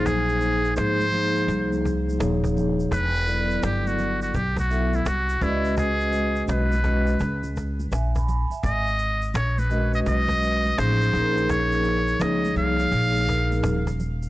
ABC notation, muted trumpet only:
X:1
M:4/4
L:1/16
Q:"Swing 16ths" 1/4=84
K:A#phr
V:1 name="Muted trumpet"
G4 ^B6 z6 | B4 =G F2 F G F2 =E F2 E2 | G4 B6 z6 | d4 c B2 d d4 ^B4 |
c4 d2 e8 z2 |]